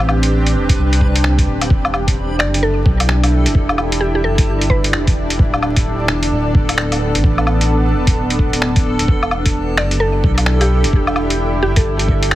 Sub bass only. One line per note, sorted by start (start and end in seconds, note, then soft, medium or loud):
0.00 0.56 A1 medium
0.55 0.76 E1 loud
0.78 1.47 C2 medium
1.48 1.69 D1 loud
1.71 2.42 E1 loud
2.40 2.85 F#1 loud
2.86 3.48 B1 loud
3.46 4.26 E1 medium
4.24 4.49 F#1 loud
4.47 4.95 G1 medium
4.93 5.38 E1 medium
5.39 6.10 D1 medium
6.09 6.30 E1 loud
6.31 7.16 D1 medium
7.15 7.95 A1 medium
7.93 8.15 E1 loud
8.16 8.99 D1 medium
9.00 9.08 D1 loud
9.08 9.79 E1 loud
9.77 10.23 F#1 loud
10.24 10.86 B1 loud
10.84 11.64 E1 medium
11.63 11.87 F#1 loud
11.85 12.33 G1 medium
12.31 12.35 E1 medium